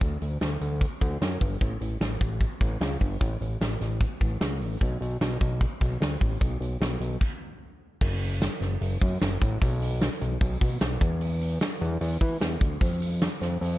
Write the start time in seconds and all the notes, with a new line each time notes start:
0.01 D2, kick, closed hi-hat
0.22 D2, closed hi-hat
0.41 D2, snare, closed hi-hat
0.61 D2, closed hi-hat
0.81 kick, closed hi-hat
1.01 D2, kick, closed hi-hat
1.21 F#2, snare, closed hi-hat
1.41 G1, kick, open hi-hat
1.61 A1, kick, closed hi-hat
1.81 A1, closed hi-hat
2.01 A1, snare, closed hi-hat
2.21 A1, kick, closed hi-hat
2.41 kick, closed hi-hat
2.61 A1, kick, closed hi-hat
2.81 C#2, snare, closed hi-hat
3.01 G1, kick, open hi-hat
3.21 A1, kick, closed hi-hat
3.41 A1, closed hi-hat
3.61 A1, snare, closed hi-hat
3.81 A1, snare, closed hi-hat
4.01 kick, closed hi-hat
4.21 A1, kick, closed hi-hat
4.41 C#2, snare, closed hi-hat
4.61 A1, open hi-hat
4.81 B1, kick, closed hi-hat
5.01 B1, closed hi-hat
5.21 B1, snare, closed hi-hat
5.41 B1, kick, closed hi-hat
5.61 kick, closed hi-hat
5.81 B1, kick, closed hi-hat
6.01 D2, snare, closed hi-hat
6.21 A1, kick, open hi-hat
6.41 B1, kick, closed hi-hat
6.61 B1, closed hi-hat
6.81 B1, snare, closed hi-hat
7.00 B1, closed hi-hat
7.21 kick, crash
8.01 F#1, kick, crash
8.21 hi-hat pedal, open hi-hat
8.41 snare, hi-hat pedal, open hi-hat
8.61 F#1, snare, hi-hat pedal, open hi-hat
8.81 F#1, hi-hat pedal, open hi-hat
9.01 F#2, kick, hi-hat pedal, open hi-hat
9.21 F#1, snare, hi-hat pedal, open hi-hat
9.41 A1, kick, hi-hat pedal, open hi-hat
9.61 B1, kick, hi-hat pedal, open hi-hat
9.81 hi-hat pedal, open hi-hat
10.01 snare, hi-hat pedal, open hi-hat
10.21 B1, hi-hat pedal, open hi-hat
10.41 B1, kick, hi-hat pedal, open hi-hat
10.61 B2, kick, hi-hat pedal, open hi-hat
10.81 B1, snare, hi-hat pedal, open hi-hat
11.01 E2, kick, hi-hat pedal, open hi-hat
11.21 hi-hat pedal, open hi-hat
11.41 hi-hat pedal, open hi-hat
11.61 snare, hi-hat pedal, open hi-hat
11.81 E2, hi-hat pedal, open hi-hat
12.01 E2, hi-hat pedal, open hi-hat
12.21 E3, kick, hi-hat pedal, open hi-hat
12.41 E2, snare, hi-hat pedal, open hi-hat
12.61 D2, kick, hi-hat pedal, open hi-hat
12.81 F2, kick, hi-hat pedal, open hi-hat
13.01 hi-hat pedal, open hi-hat
13.21 snare, hi-hat pedal, open hi-hat
13.41 F2, snare, hi-hat pedal, open hi-hat
13.61 F2, hi-hat pedal, open hi-hat